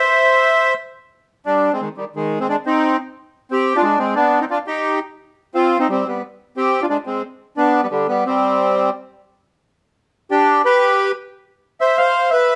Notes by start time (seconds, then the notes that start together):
Already playing: C5 E5
1.46 G3 D4
1.73 G#3 C4
1.81 D#3 G#3
1.97 D#3 G3
2.16 D#3 G#3
2.40 G#3 C4
2.49 G#3 D4
2.66 C4 D#4
3.51 C4 G4
3.76 D4 F4
3.83 G#3 D4
3.98 G#3 C4
4.15 B3 D4
4.41 C4 D#4
4.50 D4 F4
4.67 D#4 G4
5.55 C4 F4
5.79 C4 D#4
5.89 G3 C4
6.07 G3 B3
6.57 C4 G4
6.82 D4 F4
6.89 G#3 D4
7.06 G#3 C4
7.57 B3 D4
7.83 G3 B3
7.91 D3 G3
8.08 G3 B3
8.26 G3 C4
10.31 D4 G4
10.65 G4 B4
11.81 C5 E5
11.98 C5 F5
12.31 B4 E5